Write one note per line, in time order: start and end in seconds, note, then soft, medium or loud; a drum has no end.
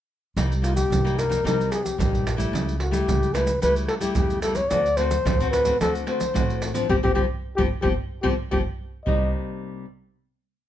0.37 0.82 C2 loud
0.37 0.88 C3 medium
0.37 0.52 G3 medium
0.37 0.53 A#3 medium
0.37 0.53 D#4 medium
0.37 pandeiro medium
0.37 maracas medium
0.37 surdo soft
0.52 pandeiro soft
0.52 maracas soft
0.62 0.88 G3 soft
0.62 0.88 A#3 soft
0.62 0.89 D#4 medium
0.62 0.75 F4 medium
0.62 pandeiro medium
0.62 maracas medium
0.76 1.20 G4 medium
0.76 pandeiro medium
0.76 maracas medium
0.76 surdo soft
0.90 1.36 C2 medium
0.90 1.42 G2 soft
0.90 pandeiro medium
0.90 maracas medium
0.90 surdo medium
1.04 1.27 G3 medium
1.04 1.27 A#3 medium
1.04 1.27 D#4 medium
1.04 pandeiro soft
1.04 maracas soft
1.19 1.45 A#4 medium
1.19 pandeiro medium
1.19 maracas medium
1.19 surdo soft
1.29 1.39 G3 medium
1.29 1.40 A#3 medium
1.29 1.40 D#4 medium
1.29 pandeiro medium
1.29 maracas medium
1.29 surdo soft
1.44 1.68 C2 medium
1.44 1.96 C3 medium
1.44 1.79 G3 medium
1.44 1.80 A#3 medium
1.44 1.80 D#4 medium
1.44 1.73 A#4 medium
1.44 pandeiro medium
1.44 maracas medium
1.44 surdo medium
1.61 pandeiro soft
1.61 maracas soft
1.72 1.86 G#4 medium
1.72 pandeiro medium
1.72 maracas medium
1.84 1.99 G4 medium
1.84 pandeiro medium
1.84 maracas medium
1.84 surdo soft
1.98 2.45 A#1 medium
1.98 2.50 G2 medium
1.98 2.24 G3 soft
1.98 2.24 A#3 medium
1.98 2.25 D#4 medium
1.98 2.38 G4 medium
1.98 pandeiro medium
1.98 maracas medium
1.98 surdo medium
2.15 pandeiro soft
2.15 maracas soft
2.27 pandeiro medium
2.27 maracas medium
2.37 2.75 G3 medium
2.37 2.75 A3 medium
2.37 2.75 E4 medium
2.37 pandeiro soft
2.37 maracas medium
2.37 surdo soft
2.52 3.00 C#2 loud
2.52 3.04 C#3 medium
2.52 pandeiro medium
2.52 maracas medium
2.52 surdo medium
2.69 pandeiro soft
2.69 maracas soft
2.79 2.93 F#4 medium
2.79 pandeiro medium
2.91 3.29 G3 medium
2.91 3.29 A3 medium
2.91 3.30 E4 medium
2.91 3.35 G4 medium
2.91 pandeiro medium
2.91 maracas medium
2.91 surdo soft
3.07 3.54 C#2 medium
3.07 3.59 C#3 medium
3.07 pandeiro medium
3.07 maracas medium
3.07 surdo medium
3.23 pandeiro soft
3.23 maracas soft
3.34 3.50 G3 medium
3.34 3.51 A3 medium
3.34 3.51 E4 medium
3.34 3.62 B4 medium
3.34 pandeiro medium
3.34 maracas medium
3.47 pandeiro soft
3.47 maracas medium
3.47 surdo soft
3.62 3.86 C#2 medium
3.62 4.14 C#3 medium
3.62 3.99 G3 medium
3.62 3.98 A3 medium
3.62 3.99 E4 medium
3.62 3.75 B4 medium
3.62 pandeiro medium
3.62 maracas medium
3.62 surdo medium
3.76 pandeiro soft
3.76 maracas soft
3.89 3.95 A4 medium
3.89 pandeiro medium
4.00 4.38 G3 medium
4.00 4.39 A3 medium
4.00 4.39 E4 medium
4.00 4.15 G4 medium
4.00 pandeiro soft
4.00 maracas medium
4.00 surdo soft
4.15 4.63 E2 medium
4.15 4.69 C#3 medium
4.15 4.42 G4 medium
4.15 pandeiro medium
4.15 maracas medium
4.15 surdo medium
4.30 pandeiro soft
4.30 maracas soft
4.42 4.60 G3 medium
4.42 4.60 A3 soft
4.42 4.60 E4 medium
4.42 4.57 A4 medium
4.42 pandeiro medium
4.42 maracas medium
4.55 4.71 C#5 medium
4.55 pandeiro medium
4.55 maracas medium
4.55 surdo soft
4.69 5.17 D2 loud
4.69 5.22 D3 medium
4.69 4.87 A3 soft
4.69 4.87 C4 medium
4.69 4.87 F#4 medium
4.69 4.98 D5 loud
4.69 pandeiro medium
4.69 maracas medium
4.69 surdo soft
4.86 pandeiro soft
4.86 maracas soft
4.97 5.15 A3 medium
4.97 5.14 C4 medium
4.97 5.15 F#4 medium
4.97 5.50 C5 loud
4.97 pandeiro medium
4.97 maracas medium
5.11 pandeiro medium
5.11 maracas medium
5.11 surdo soft
5.25 5.72 D2 medium
5.25 5.77 A2 medium
5.25 5.35 A3 soft
5.25 5.35 C4 soft
5.25 5.35 F#4 medium
5.25 pandeiro medium
5.25 maracas medium
5.25 surdo loud
5.40 5.63 A3 medium
5.40 5.63 C4 medium
5.40 5.63 F#4 medium
5.40 pandeiro soft
5.40 maracas soft
5.51 5.77 B4 medium
5.51 pandeiro medium
5.51 maracas medium
5.51 surdo soft
5.65 5.75 A3 medium
5.65 5.76 C4 medium
5.65 5.75 F#4 medium
5.65 pandeiro medium
5.65 maracas medium
5.65 surdo soft
5.81 6.04 D2 medium
5.81 6.32 D3 medium
5.81 6.04 A3 medium
5.81 6.04 C4 medium
5.81 6.04 F#4 medium
5.81 5.93 A4 medium
5.81 pandeiro medium
5.81 maracas medium
5.81 surdo medium
5.95 pandeiro soft
5.95 maracas soft
6.07 6.23 A3 medium
6.07 6.23 C4 medium
6.07 6.24 F#4 medium
6.07 6.59 C5 medium
6.07 pandeiro medium
6.20 pandeiro medium
6.20 maracas medium
6.20 surdo soft
6.34 6.81 A1 medium
6.34 6.86 A2 medium
6.34 6.71 A3 medium
6.34 6.71 C4 medium
6.34 6.71 F#4 medium
6.34 pandeiro medium
6.34 maracas medium
6.34 surdo medium
6.50 pandeiro soft
6.50 maracas soft
6.62 pandeiro medium
6.62 maracas medium
6.74 6.88 F3 medium
6.74 6.88 C4 medium
6.74 6.89 D4 medium
6.74 pandeiro medium
6.74 maracas medium
6.74 surdo soft
6.89 6.99 G1 medium
6.89 6.98 F3 medium
6.89 6.98 G3 medium
6.89 6.98 C4 medium
6.89 6.96 G4 medium
6.89 surdo medium
7.03 7.14 G1 medium
7.03 7.12 F3 medium
7.03 7.12 G3 medium
7.03 7.12 C4 medium
7.03 7.10 G4 medium
7.03 surdo medium
7.15 7.27 G1 medium
7.15 7.24 F3 medium
7.15 7.25 G3 medium
7.15 7.24 C4 medium
7.15 7.22 G4 medium
7.15 surdo medium
7.56 7.68 G1 medium
7.56 7.66 F3 medium
7.56 7.66 G3 medium
7.56 7.66 C4 medium
7.56 7.63 G4 medium
7.56 surdo medium
7.82 7.94 G1 loud
7.82 7.92 F3 medium
7.82 7.92 G3 medium
7.82 7.92 C4 medium
7.82 7.89 G4 medium
7.82 surdo medium
8.22 8.35 G1 medium
8.22 8.33 F3 medium
8.22 8.33 G3 medium
8.22 8.33 C4 loud
8.22 8.30 G4 medium
8.22 surdo medium
8.51 8.63 G1 medium
8.51 8.61 F3 medium
8.51 8.61 G3 medium
8.51 8.61 C4 medium
8.51 8.58 G4 medium
8.51 surdo medium
9.06 9.32 C2 medium
9.06 9.85 C3 medium
9.06 9.85 G3 medium
9.06 9.85 A#3 medium
9.06 9.85 D#4 medium
9.06 9.31 D#5 medium
9.06 surdo medium